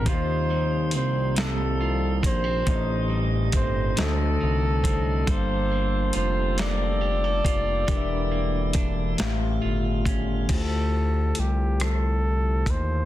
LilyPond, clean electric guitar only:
\new Staff \with { instrumentName = "Clean electric guitar" } { \time 6/8 \key d \minor \tempo 4. = 46 <ees f'>8 g8 c'8 g8 f'8 bes16 c'16 | <a, ees'>8 g8 c'8 d8 ees'8 c'8 | <g a'>8 bes8 f'8 bes8 g'16 a'16 f'8 | <e g'>8 bes8 d'8 a,8 f'8 cis'8 |
r2. | }